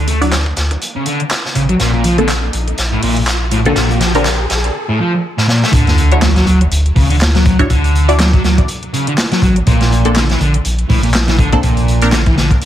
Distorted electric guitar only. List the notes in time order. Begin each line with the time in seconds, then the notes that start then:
0.08 A3
0.22 F#3
0.96 C#3
1.06 D3
1.55 C#3
1.69 F#3
1.80 A#2
1.94 A#2
2.05 F3
2.19 D3
2.92 A2
3.03 A#2
3.52 A2
3.66 D3
3.76 A#2
3.90 A#2
4.01 F3
4.15 D3
4.89 A2
5.00 F3
5.38 A2
5.48 A#2
5.63 A3
5.73 D3
6.22 F#3
6.36 F#3
6.47 F#3
6.96 C#3
7.10 D3
7.34 F#3
7.45 F#3
7.70 D3
8.19 F#3
8.33 F#3
8.44 F#3
8.93 C#3
9.07 D3
9.32 F#3
9.42 F#3
9.67 A#2
10.16 D3
10.30 E3
10.40 D3
10.89 A2
11.04 A#2
11.28 E3
11.38 D3
11.63 A#2
12.12 D3
12.26 E3
12.37 D3